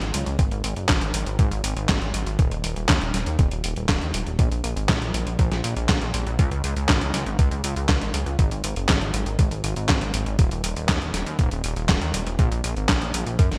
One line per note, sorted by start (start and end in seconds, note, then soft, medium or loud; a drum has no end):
0.01 0.12 G#1 medium
0.01 closed hi-hat soft
0.14 0.25 C#2 medium
0.14 closed hi-hat loud
0.26 0.37 C#2 medium
0.26 closed hi-hat soft
0.39 0.50 G#1 loud
0.39 kick loud
0.39 closed hi-hat medium
0.51 0.62 G#1 medium
0.51 closed hi-hat soft
0.64 0.75 G#1 loud
0.64 closed hi-hat medium
0.76 0.87 F#1 medium
0.76 closed hi-hat soft
0.89 1.00 G#1 loud
0.89 kick loud
0.89 snare loud
0.89 clap loud
0.89 closed hi-hat medium
1.01 1.12 G#1 medium
1.01 closed hi-hat soft
1.14 1.25 G#1 medium
1.14 closed hi-hat loud
1.26 1.37 G#1 medium
1.26 closed hi-hat soft
1.39 1.50 G#1 loud
1.39 kick loud
1.39 closed hi-hat medium
1.51 1.62 G#1 medium
1.51 closed hi-hat soft
1.64 1.75 G#1 loud
1.64 closed hi-hat loud
1.76 1.87 G#1 medium
1.76 closed hi-hat soft
1.89 2.00 G#1 loud
1.89 kick loud
1.89 snare loud
1.89 clap loud
1.89 closed hi-hat medium
2.01 2.12 G#1 medium
2.01 closed hi-hat soft
2.14 2.25 G#1 medium
2.14 closed hi-hat loud
2.26 2.37 G#1 medium
2.26 closed hi-hat soft
2.39 2.50 D#1 loud
2.39 kick loud
2.39 closed hi-hat medium
2.51 2.62 D#1 medium
2.51 closed hi-hat soft
2.64 2.75 D#1 medium
2.64 closed hi-hat medium
2.76 2.87 D#1 medium
2.76 closed hi-hat soft
2.89 3.00 D#2 loud
2.89 kick loud
2.89 snare loud
2.89 clap loud
2.89 closed hi-hat medium
3.01 3.12 D#1 medium
3.01 closed hi-hat soft
3.14 3.25 D#1 medium
3.14 snare soft
3.14 closed hi-hat medium
3.26 3.37 D#2 medium
3.26 closed hi-hat soft
3.39 3.50 D#1 loud
3.39 kick loud
3.39 closed hi-hat medium
3.51 3.62 D#1 medium
3.51 closed hi-hat soft
3.64 3.75 D#1 medium
3.64 closed hi-hat medium
3.76 3.87 D#1 medium
3.76 closed hi-hat soft
3.89 4.00 D#1 loud
3.89 kick loud
3.89 snare loud
3.89 clap loud
3.89 closed hi-hat medium
4.01 4.12 D#2 medium
4.01 closed hi-hat soft
4.14 4.25 D#1 medium
4.14 closed hi-hat medium
4.26 4.37 D#1 medium
4.26 closed hi-hat soft
4.39 4.50 A#1 loud
4.39 kick loud
4.39 closed hi-hat medium
4.51 4.62 A#1 medium
4.51 closed hi-hat soft
4.64 4.75 A#1 medium
4.64 closed hi-hat medium
4.76 4.87 G#1 medium
4.76 closed hi-hat soft
4.89 5.00 A#1 loud
4.89 kick loud
4.89 snare loud
4.89 clap loud
4.89 closed hi-hat medium
5.01 5.12 A#1 medium
5.01 closed hi-hat soft
5.14 5.25 A#1 loud
5.14 closed hi-hat medium
5.26 5.37 A#1 medium
5.26 closed hi-hat soft
5.39 5.50 A#1 loud
5.39 kick loud
5.39 closed hi-hat medium
5.51 5.62 A#1 medium
5.51 snare soft
5.51 closed hi-hat soft
5.64 5.75 A#1 loud
5.64 closed hi-hat medium
5.77 5.87 A#1 medium
5.77 closed hi-hat soft
5.89 6.00 A#1 loud
5.89 kick loud
5.89 snare loud
5.89 clap loud
5.89 closed hi-hat medium
6.01 6.12 A#1 medium
6.01 closed hi-hat soft
6.14 6.25 A#1 medium
6.14 closed hi-hat medium
6.27 6.37 A#1 medium
6.27 closed hi-hat soft
6.39 6.50 C#2 loud
6.39 kick loud
6.39 closed hi-hat medium
6.51 6.62 C#2 medium
6.51 closed hi-hat soft
6.64 6.75 C#2 loud
6.64 closed hi-hat medium
6.76 6.87 C#2 medium
6.76 closed hi-hat soft
6.89 7.00 G#1 loud
6.89 kick loud
6.89 snare loud
6.89 clap loud
6.89 closed hi-hat medium
7.01 7.12 C#2 medium
7.01 closed hi-hat soft
7.14 7.25 C#2 medium
7.14 snare soft
7.14 closed hi-hat medium
7.26 7.37 G#1 medium
7.26 closed hi-hat soft
7.39 7.50 C#2 loud
7.39 kick loud
7.39 closed hi-hat medium
7.51 7.62 C#2 medium
7.51 closed hi-hat soft
7.64 7.75 C#2 loud
7.64 closed hi-hat medium
7.76 7.87 C#2 medium
7.76 closed hi-hat soft
7.89 8.00 C#2 loud
7.89 kick loud
7.89 snare loud
7.89 clap loud
7.89 closed hi-hat medium
8.01 8.12 G#1 medium
8.01 closed hi-hat soft
8.14 8.25 C#2 medium
8.14 closed hi-hat medium
8.26 8.37 C#2 medium
8.26 closed hi-hat soft
8.39 8.50 G#1 loud
8.39 kick loud
8.39 closed hi-hat medium
8.51 8.62 G#1 medium
8.51 closed hi-hat soft
8.64 8.75 G#1 medium
8.64 closed hi-hat medium
8.76 8.87 F#1 medium
8.76 closed hi-hat soft
8.89 9.00 G#1 loud
8.89 kick loud
8.89 snare loud
8.89 clap loud
8.89 closed hi-hat medium
9.01 9.12 G#1 medium
9.01 closed hi-hat soft
9.14 9.25 G#1 loud
9.14 closed hi-hat medium
9.26 9.37 G#1 medium
9.26 closed hi-hat soft
9.39 9.50 G#1 loud
9.39 kick loud
9.39 closed hi-hat medium
9.51 9.62 G#1 medium
9.51 closed hi-hat soft
9.64 9.75 G#1 loud
9.64 closed hi-hat medium
9.76 9.87 G#1 medium
9.76 closed hi-hat soft
9.89 10.00 G#1 loud
9.89 kick loud
9.89 snare loud
9.89 clap loud
9.89 closed hi-hat medium
10.01 10.12 G#1 medium
10.01 closed hi-hat soft
10.14 10.25 G#1 loud
10.14 closed hi-hat loud
10.26 10.37 G#1 medium
10.26 closed hi-hat soft
10.39 10.50 D#1 loud
10.39 kick loud
10.39 closed hi-hat medium
10.51 10.62 D#1 medium
10.51 closed hi-hat soft
10.64 10.75 D#1 medium
10.64 closed hi-hat loud
10.76 10.87 D#1 medium
10.76 closed hi-hat soft
10.89 11.00 D#2 loud
10.89 kick loud
10.89 snare loud
10.89 clap loud
10.89 closed hi-hat medium
11.01 11.12 D#1 medium
11.01 closed hi-hat soft
11.14 11.25 D#1 medium
11.14 snare soft
11.14 closed hi-hat loud
11.26 11.37 D#2 medium
11.26 closed hi-hat soft
11.39 11.50 D#1 loud
11.39 kick loud
11.39 closed hi-hat medium
11.51 11.62 D#1 medium
11.51 closed hi-hat soft
11.64 11.75 D#1 loud
11.64 closed hi-hat loud
11.76 11.87 D#1 medium
11.76 closed hi-hat soft
11.89 12.00 D#1 loud
11.89 kick loud
11.89 snare loud
11.89 clap loud
11.89 closed hi-hat medium
12.01 12.12 D#2 medium
12.01 closed hi-hat soft
12.14 12.25 D#1 medium
12.14 closed hi-hat loud
12.26 12.37 D#1 medium
12.26 closed hi-hat soft
12.39 12.50 A#1 loud
12.39 kick loud
12.39 closed hi-hat medium
12.51 12.62 A#1 medium
12.51 closed hi-hat soft
12.64 12.75 A#1 loud
12.64 closed hi-hat loud
12.76 12.87 G#1 medium
12.76 closed hi-hat soft
12.89 13.00 A#1 loud
12.89 kick loud
12.89 snare loud
12.89 clap loud
12.89 closed hi-hat medium
13.01 13.12 A#1 medium
13.01 closed hi-hat soft
13.14 13.25 A#1 loud
13.14 closed hi-hat loud
13.26 13.37 A#1 medium
13.26 closed hi-hat soft
13.39 13.50 F#2 loud
13.39 kick loud
13.39 closed hi-hat medium
13.51 13.58 F#1 medium
13.51 snare soft
13.51 closed hi-hat soft